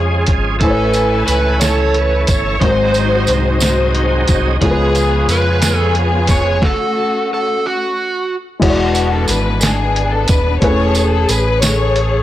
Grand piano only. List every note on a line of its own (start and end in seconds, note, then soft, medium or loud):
0.00 0.63 C#3 medium
0.00 0.56 G#3 medium
0.00 0.57 C#4 medium
0.00 0.58 F4 medium
0.00 0.58 C#5 medium
0.61 1.58 A2 medium
0.61 2.57 A3 medium
0.61 2.58 E4 medium
0.61 0.69 C5 soft
0.61 2.58 G#5 soft
0.70 2.62 C#5 medium
2.61 3.58 G#2 medium
2.61 4.58 G#3 medium
2.61 4.58 D#4 medium
2.61 4.59 F#4 soft
2.61 2.69 A#4 soft
2.71 4.62 C5 medium
4.61 5.59 C#3 medium
4.61 6.58 G#3 medium
4.61 6.58 C#4 medium
4.61 6.59 F4 medium
4.61 4.70 A4 medium
4.71 6.63 B4 medium
8.59 9.58 E3 medium
8.59 10.56 G#3 medium
8.59 10.57 E4 medium
8.59 10.58 F#4 medium
8.59 8.69 C#5 medium
8.69 10.61 D5 medium
10.62 11.58 E3 medium
10.62 12.23 A3 medium
10.62 10.68 C4 soft
10.62 12.23 B4 medium
10.62 12.23 G#5 medium
10.69 12.23 C#4 medium